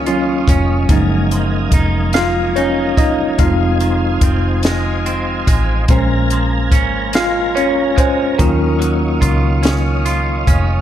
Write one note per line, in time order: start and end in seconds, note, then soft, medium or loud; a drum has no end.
0.00 0.44 C#2 medium
0.00 1.35 D#3 medium
0.00 0.07 F#3 medium
0.00 1.32 F#3 medium
0.00 0.45 A#3 medium
0.00 0.08 C#4 medium
0.00 0.49 C#4 medium
0.00 0.07 F4 medium
0.00 0.43 A#4 medium
0.00 0.87 C#5 medium
0.00 5.86 D#5 medium
0.00 0.85 F5 medium
0.06 0.44 F#3 soft
0.06 0.44 C#4 medium
0.06 1.73 F4 medium
0.06 0.44 F4 medium
0.06 closed hi-hat medium
0.48 0.86 F1 medium
0.48 1.77 C#4 medium
0.48 kick loud
0.48 closed hi-hat medium
0.88 1.69 F#1 loud
0.88 3.38 F#2 medium
0.88 3.35 F3 medium
0.88 3.35 G#3 medium
0.88 3.35 A#3 medium
0.88 2.99 D#4 medium
0.88 3.36 A#4 medium
0.88 5.85 F5 medium
0.88 5.85 G#5 medium
0.88 kick loud
0.88 closed hi-hat medium
1.31 3.80 F3 medium
1.31 closed hi-hat medium
1.72 3.35 F1 medium
1.72 2.56 D#4 medium
1.72 kick loud
1.72 closed hi-hat medium
2.13 2.96 A#3 medium
2.13 2.54 F4 medium
2.13 2.57 F5 loud
2.13 snare loud
2.13 closed hi-hat medium
2.56 2.96 C#4 medium
2.56 4.23 D#4 medium
2.56 2.99 C#5 medium
2.56 closed hi-hat medium
2.97 3.47 A#3 medium
2.97 3.38 D#4 medium
2.97 3.41 D#5 loud
2.97 kick loud
2.97 closed hi-hat medium
3.38 4.19 F1 loud
3.38 5.89 F2 medium
3.38 5.86 G#3 medium
3.38 5.86 C4 medium
3.38 5.86 D#4 medium
3.38 5.45 F4 medium
3.38 5.86 C5 medium
3.38 5.44 F5 medium
3.38 kick loud
3.38 closed hi-hat medium
3.80 5.97 D#3 medium
3.80 closed hi-hat medium
4.21 5.43 F1 medium
4.21 5.05 C4 medium
4.21 kick medium
4.21 closed hi-hat medium
4.63 5.47 G#3 medium
4.63 snare loud
4.63 closed hi-hat medium
5.06 5.98 C4 medium
5.06 closed hi-hat medium
5.47 5.85 A1 medium
5.47 7.14 G#3 medium
5.47 kick loud
5.47 closed hi-hat medium
5.88 6.72 A#1 loud
5.88 8.38 A#2 medium
5.88 7.10 G#3 medium
5.88 7.11 C#4 medium
5.88 8.37 A#4 medium
5.88 7.11 C5 medium
5.88 10.81 F5 medium
5.88 8.37 G#5 medium
5.88 8.37 A#5 medium
5.88 kick loud
5.88 closed hi-hat medium
6.30 8.79 F3 medium
6.30 closed hi-hat medium
6.72 8.35 G#1 medium
6.72 7.55 C#4 medium
6.72 kick loud
6.72 closed hi-hat medium
7.13 7.95 G#3 medium
7.13 7.54 F4 medium
7.13 7.58 F5 loud
7.13 snare loud
7.13 closed hi-hat medium
7.55 9.21 C#4 medium
7.55 7.95 C#4 medium
7.55 7.94 C#5 loud
7.55 closed hi-hat medium
7.96 8.47 G#3 medium
7.96 8.38 C#4 medium
7.96 8.41 C5 medium
7.96 kick loud
7.96 closed hi-hat medium
8.38 9.19 D#2 loud
8.38 10.81 D#3 medium
8.38 9.60 F#3 medium
8.38 10.44 A#3 medium
8.38 9.60 C#4 soft
8.38 9.61 F4 medium
8.38 10.43 A#4 medium
8.38 10.81 C#5 medium
8.38 10.81 D#5 medium
8.38 kick loud
8.38 closed hi-hat medium
8.79 10.81 F#3 medium
8.79 closed hi-hat medium
9.21 10.44 C#2 medium
9.21 10.05 F4 medium
9.21 kick loud
9.21 closed hi-hat medium
9.63 10.47 C#4 medium
9.63 snare loud
9.63 closed hi-hat medium
10.05 10.81 F4 medium
10.05 closed hi-hat medium
10.47 10.81 F1 loud
10.47 10.81 C#4 medium
10.47 kick loud
10.47 closed hi-hat medium